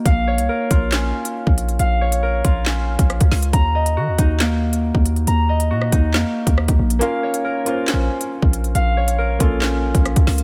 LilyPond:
<<
  \new Staff \with { instrumentName = "Harp" } { \time 4/4 \key bes \minor \tempo 4 = 138 f''8 des''8 bes'8 f'8 des'2 | f''8 des''8 bes'8 f'8 des'2 | bes''8 ees''8 ges'8 ees'8 bes2 | bes''8 ees''8 ges'8 ees'8 bes2 |
f''8 des''8 bes'8 f'8 des'2 | f''8 des''8 bes'8 f'8 des'2 | }
  \new Staff \with { instrumentName = "Felt piano" } { \time 4/4 \key bes \minor r1 | r1 | r1 | r1 |
<bes des' f' bes'>4 r8 <bes des' f' c''>4. r4 | r4. <bes des' f' a'>4. r4 | }
  \new Staff \with { instrumentName = "808-style bass" } { \clef bass \time 4/4 \key bes \minor bes,,8. c,16 r8 bes,,4 r8. bes,,8. | bes,,4. bes,,4~ bes,,16 bes,,8 des,16 des,8 | ees,4 ees16 ees,16 ees,4.~ ees,16 ees,8. | ees,4 bes,8 ees,8 f,16 r8 ees,8 ees,16 bes,,8 |
r2 r32 bes,,16. r8. bes,,8. | bes,,4. bes,,4~ bes,,16 bes,,8 des,16 des,8 | }
  \new DrumStaff \with { instrumentName = "Drums" } \drummode { \time 4/4 <hh bd>8. hh16 r8 <hh bd>8 <hc hh sn>8. hh16 r16 bd16 hh16 hh16 | hh8. hh16 r8 <hh bd>8 <hc sn>8. <hh bd>16 <hh ss>16 <hh bd>16 <hho sn>16 hh16 | <hh bd>8. hh16 r8 <hh bd>8 <hc hh sn>8. hh16 r16 bd16 hh16 hh16 | hh8. hh16 r16 ss16 <hh bd>8 <hc sn>8. <hh bd>16 ss16 <hh bd>8 hh16 |
hh8. hh16 r8 hh8 <hc hh sn>8. hh16 r16 bd16 hh16 hh16 | hh8. hh16 r8 <hh bd>8 <hc sn>8. <hh bd>16 <hh ss>16 <hh bd>16 <hho sn>16 hh16 | }
>>